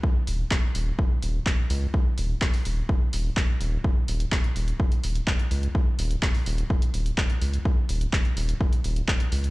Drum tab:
HH |--o---o---o---o-|--o--oo---o---o-|--ox-xox-xox-xox|--ox-oox-xox-xox|
CP |----x-------x---|----x-------x---|----x-------x---|----x-------x---|
BD |o---o---o---o---|o---o---o---o---|o---o---o---o---|o---o---o---o---|

HH |--ox-xox-xox-xox|
CP |----x-------x---|
BD |o---o---o---o---|